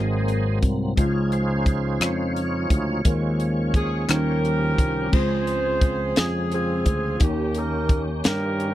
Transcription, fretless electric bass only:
0.00 0.59 G#1 medium
0.63 0.95 C2 medium
0.98 1.98 C#2 medium
2.00 2.66 F2 medium
2.70 3.02 D2 medium
3.05 4.05 D#2 medium
4.09 4.78 D#2 medium
4.78 5.10 C2 medium
5.13 6.13 C#2 medium
6.18 6.83 F2 medium
6.85 7.18 D2 medium
7.21 8.21 D#2 medium
8.26 8.74 G2 medium

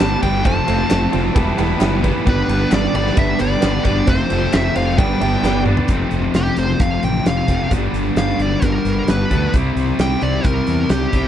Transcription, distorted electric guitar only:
0.00 0.20 G3 medium
0.00 0.21 B3 loud
0.00 0.22 D4 loud
0.00 0.22 G4 medium
0.22 0.44 G3 loud
0.22 0.44 B3 medium
0.22 0.44 D4 loud
0.22 0.45 G4 loud
0.44 0.66 F3 loud
0.44 0.66 A3 loud
0.44 0.67 C4 loud
0.44 0.67 F4 loud
0.67 0.88 F3 loud
0.67 0.89 A3 loud
0.67 0.90 C4 loud
0.67 0.90 F4 loud
0.89 1.10 F3 medium
0.89 1.11 A3 loud
0.89 1.12 C4 loud
0.89 1.12 F4 loud
1.12 1.34 F3 medium
1.12 1.34 A3 medium
1.12 1.35 C4 medium
1.12 1.35 F4 medium
1.35 1.56 E3 loud
1.35 1.57 G3 loud
1.35 1.58 B3 loud
1.35 1.58 E4 loud
1.57 1.78 E3 medium
1.57 1.79 G3 loud
1.57 1.79 B3 loud
1.57 1.80 E4 loud
1.79 2.02 E3 medium
1.79 2.03 G3 medium
1.79 2.03 B3 medium
1.79 2.03 E4 medium
2.03 2.25 E3 loud
2.03 2.25 G3 loud
2.03 2.26 B3 loud
2.03 2.26 E4 loud
2.25 2.48 G2 loud
2.25 2.48 D3 loud
2.25 2.49 G3 loud
2.25 2.49 B3 loud
2.25 2.50 D4 loud
2.49 2.69 G2 medium
2.49 2.70 D3 loud
2.49 2.71 G3 medium
2.49 2.71 B3 loud
2.49 2.72 D4 loud
2.70 2.93 G2 medium
2.70 2.94 D3 loud
2.70 2.94 G3 loud
2.70 2.95 B3 loud
2.70 2.96 D4 loud
2.94 3.15 G2 medium
2.94 3.16 D3 medium
2.94 3.17 G3 loud
2.94 3.18 B3 loud
2.94 3.18 D4 medium
3.17 3.38 G2 medium
3.17 3.39 D3 medium
3.17 3.40 G3 loud
3.17 3.40 B3 loud
3.17 3.41 D4 loud
3.39 3.60 G2 loud
3.39 3.61 D3 loud
3.39 3.62 G3 loud
3.39 3.63 B3 loud
3.39 3.63 D4 loud
3.62 3.83 G2 medium
3.62 3.84 D3 medium
3.62 3.85 G3 medium
3.62 3.85 B3 medium
3.62 3.86 D4 loud
3.85 4.06 G2 medium
3.85 4.07 D3 medium
3.85 4.07 G3 loud
3.85 4.07 B3 loud
3.85 4.08 D4 loud
4.08 4.29 F2 loud
4.08 4.30 C3 loud
4.08 4.31 F3 loud
4.08 4.31 A3 loud
4.08 4.32 C4 loud
4.30 4.51 F2 medium
4.30 4.52 C3 loud
4.30 4.52 F3 loud
4.30 4.53 A3 loud
4.30 4.53 C4 loud
4.52 4.73 F2 medium
4.52 4.74 C3 loud
4.52 4.75 F3 medium
4.52 4.75 A3 loud
4.52 4.75 C4 loud
4.74 4.96 F2 medium
4.74 4.97 C3 medium
4.74 4.97 F3 loud
4.74 4.97 A3 medium
4.74 4.98 C4 loud
4.97 5.19 G2 loud
4.97 5.19 D3 medium
4.97 5.20 G3 loud
4.97 5.21 B3 loud
4.97 5.21 D4 loud
5.20 5.42 G2 loud
5.20 5.43 D3 loud
5.20 5.43 G3 loud
5.20 5.44 B3 loud
5.20 5.45 D4 loud
5.43 5.65 G2 medium
5.43 5.65 D3 medium
5.43 5.66 G3 loud
5.43 5.66 B3 medium
5.43 5.67 D4 loud
5.66 5.88 G2 medium
5.66 5.88 D3 medium
5.66 5.88 G3 loud
5.66 5.89 B3 loud
5.66 5.89 D4 loud
5.89 7.47 F2 medium
5.89 7.47 C3 medium
5.89 7.48 F3 medium
5.89 7.47 A3 loud
5.89 7.46 C4 loud
7.47 7.70 F2 medium
7.47 7.71 C3 medium
7.47 7.71 F3 medium
7.47 7.70 A3 medium
7.47 7.70 C4 medium
7.70 9.29 G2 medium
7.70 9.29 D3 medium
7.70 9.32 G3 loud
7.70 9.31 B3 loud
7.70 9.29 D4 loud
9.30 9.53 D3 medium
9.30 9.55 G3 medium
9.30 9.53 B3 medium
9.30 9.52 D4 medium
9.34 9.54 G2 medium
9.54 11.12 C3 medium
9.54 11.13 G3 medium
9.54 11.12 C4 loud
9.58 11.10 E4 loud
11.11 11.28 G3 medium
11.11 11.28 C4 medium
11.11 11.28 E4 loud
11.15 11.28 C3 medium

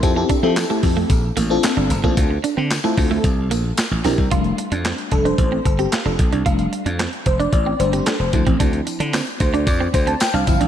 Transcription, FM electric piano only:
0.03 0.13 C4 loud
0.03 0.13 E4 medium
0.03 0.13 G4 medium
0.03 0.13 A4 loud
0.16 0.36 C4 medium
0.16 0.36 E4 medium
0.16 0.36 G4 medium
0.16 0.36 A4 loud
0.43 0.63 C4 medium
0.43 0.63 E4 medium
0.43 0.63 G4 medium
0.43 0.63 A4 loud
0.70 1.10 C4 medium
0.70 1.10 E4 medium
0.70 1.10 G4 medium
0.70 1.10 A4 medium
1.50 1.90 C4 medium
1.50 1.90 D4 medium
1.50 1.90 F4 medium
1.50 1.90 A4 loud
2.04 2.17 C4 medium
2.04 2.17 D4 medium
2.04 2.17 F4 medium
2.04 2.18 A4 loud
2.84 3.24 C4 medium
2.84 3.24 E4 medium
2.84 3.24 F4 medium
2.84 3.25 A4 loud
4.04 4.24 D4 medium
4.04 4.25 E4 medium
4.04 4.25 G4 medium
4.04 4.25 A#4 medium
4.31 5.08 G3 medium
4.31 5.08 A3 soft
4.31 5.08 D4 medium
5.11 5.36 G3 soft
5.11 5.36 A3 soft
5.11 5.36 D4 soft
5.11 5.26 A4 loud
5.25 5.38 C5 loud
5.39 5.66 C5 medium
5.66 5.78 A4 medium
5.79 5.93 G4 medium
5.93 6.06 F4 medium
6.06 6.31 A4 medium
6.45 6.81 G3 soft
6.45 6.81 A3 soft
6.45 6.82 D4 medium
7.27 7.40 C5 medium
7.40 7.52 D5 loud
7.53 7.81 D5 loud
7.79 8.04 G3 soft
7.79 8.04 A3 soft
7.79 8.04 D4 medium
7.79 7.94 C5 medium
7.93 8.07 G4 medium
8.06 8.20 A4 medium
8.20 8.45 C5 medium
8.33 9.09 F3 medium
8.33 9.10 C4 soft
8.33 9.10 E4 medium
9.40 9.54 C5 medium
9.54 9.66 D5 medium
9.67 9.92 D5 medium
9.94 10.07 C5 medium
10.08 10.21 A5 medium
10.21 10.33 G5 loud
10.34 10.59 F5 medium
10.47 10.68 F3 medium
10.47 10.68 C4 soft
10.47 10.68 E4 medium

